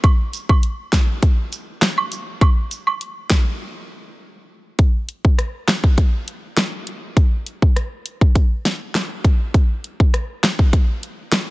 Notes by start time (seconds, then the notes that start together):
0.04 kick, closed hi-hat, high woodblock
0.33 closed hi-hat, cabasa
0.49 kick, high woodblock
0.63 closed hi-hat
0.93 kick, snare, clap, closed hi-hat, cabasa
1.23 kick, closed hi-hat
1.53 closed hi-hat, cabasa
1.82 snare, clap, closed hi-hat
1.98 high woodblock
2.12 closed hi-hat, cabasa
2.41 kick, closed hi-hat, high woodblock
2.71 closed hi-hat, cabasa
2.87 high woodblock
3.01 closed hi-hat
3.30 kick, snare, clap, closed hi-hat, cabasa
4.79 kick, closed hi-hat
5.09 closed hi-hat
5.25 kick
5.39 cross-stick, closed hi-hat
5.68 snare, clap, closed hi-hat
5.84 kick
5.98 kick, closed hi-hat
6.28 closed hi-hat
6.57 snare, clap, closed hi-hat
6.87 closed hi-hat
7.17 kick, closed hi-hat
7.46 closed hi-hat
7.62 kick
7.76 cross-stick, closed hi-hat
8.06 closed hi-hat
8.21 kick
8.35 kick, closed hi-hat
8.65 snare, closed hi-hat
8.95 snare, clap, closed hi-hat
9.25 kick, closed hi-hat
9.54 kick, closed hi-hat
9.84 closed hi-hat
10.00 kick
10.14 cross-stick, closed hi-hat
10.44 snare, clap, closed hi-hat
10.59 kick
10.73 kick, closed hi-hat
11.03 closed hi-hat
11.32 snare, clap, closed hi-hat